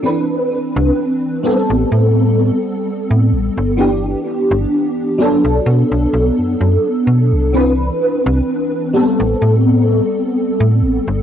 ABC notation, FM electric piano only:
X:1
M:4/4
L:1/8
Q:"Swing 16ths" 1/4=64
K:Ador
V:1 name="FM electric piano"
[E,CDB]3 [G,B,CA]4- [G,B,CA] | [E,B,DG]3 [F,B,DA]4- [F,B,DA] | [E,CDB]3 [G,B,CA]4- [G,B,CA] |]